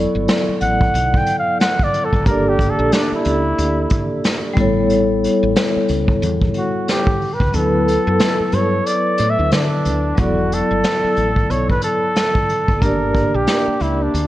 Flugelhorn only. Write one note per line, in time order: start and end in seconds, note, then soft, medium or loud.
0.62 1.19 F#5 loud
1.17 1.38 G5 medium
1.39 1.59 F5 loud
1.61 1.85 F#5 loud
1.84 2.06 D5 loud
2.05 2.26 A4 medium
2.27 2.51 A#4 medium
2.49 2.72 G4 medium
2.70 2.95 A4 medium
2.93 3.15 D4 medium
3.15 4.10 E4 medium
6.58 6.87 F#4 medium
6.90 7.35 G4 medium
7.34 7.57 B4 medium
7.55 8.56 A4 medium
8.54 8.88 C#5 medium
8.86 9.32 D5 loud
9.30 9.52 E5 loud
9.53 10.21 D4 medium
10.19 10.55 F#4 medium
10.54 11.52 A4 loud
11.51 11.70 C#5 loud
11.70 11.82 B4 loud
11.84 12.84 A4 loud
12.82 13.37 A#4 medium
13.35 13.84 G4 medium
13.82 14.04 E4 medium
14.03 14.27 D4 medium